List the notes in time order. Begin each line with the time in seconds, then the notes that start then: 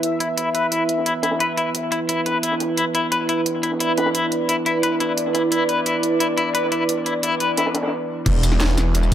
Already playing: E4 B4 E5
0.03 closed hi-hat, ride
0.20 E4, closed hi-hat, ride
0.38 E4, closed hi-hat, ride
0.54 B4, closed hi-hat, ride
0.71 E4, closed hi-hat, ride
0.88 closed hi-hat, ride
0.98 snare
1.06 E4, closed hi-hat, ride
1.23 E4, snare, closed hi-hat, ride
1.31 snare, ride
1.40 B4, closed hi-hat, ride
1.57 E4, closed hi-hat, ride
1.75 closed hi-hat, ride
1.92 E4, closed hi-hat, ride
2.09 E4, closed hi-hat, ride
2.26 B4, snare, closed hi-hat, ride
2.43 E4, closed hi-hat, ride
2.52 snare
2.60 snare, closed hi-hat, ride
2.77 E4 D5, closed hi-hat, ride
2.95 E4, closed hi-hat, ride
3.11 B4, closed hi-hat, ride
3.21 ride
3.29 E4, closed hi-hat, ride
3.46 closed hi-hat, ride
3.63 E4, closed hi-hat, ride
3.72 snare
3.80 E4, closed hi-hat, ride
3.98 B4, snare, closed hi-hat, ride
4.06 snare, ride
4.15 E4, closed hi-hat, ride
4.31 closed hi-hat, ride
4.49 E4, closed hi-hat, ride
4.66 E4, closed hi-hat, ride
4.83 B4, closed hi-hat, ride
5.00 E4, snare, closed hi-hat, ride
5.17 closed hi-hat, ride
5.26 snare
5.34 E4, snare, closed hi-hat, ride
5.52 E4, closed hi-hat, ride
5.69 B4, closed hi-hat, ride
5.86 E4, closed hi-hat, ride
5.94 ride
6.03 closed hi-hat, ride
6.20 E4, closed hi-hat, ride
6.37 E4, closed hi-hat, ride
6.55 B4, closed hi-hat, ride
6.64 snare
6.72 E4, closed hi-hat, ride
6.89 closed hi-hat, ride
7.06 E4, closed hi-hat, ride
7.23 E4, closed hi-hat, ride
7.40 B4, closed hi-hat, ride
7.57 E4, snare, closed hi-hat, ride
7.66 snare, ride
7.74 snare, closed hi-hat, ride
7.83 snare, ride
7.87 snare, ride
8.26 E1 E4 B4 E5, kick, closed hi-hat, crash, ride
8.43 E1, closed hi-hat, ride, tambourine
8.52 snare
8.60 snare, closed hi-hat, ride
8.69 ride
8.78 snare, closed hi-hat, ride, tambourine
8.95 closed hi-hat, ride, tambourine
9.03 tambourine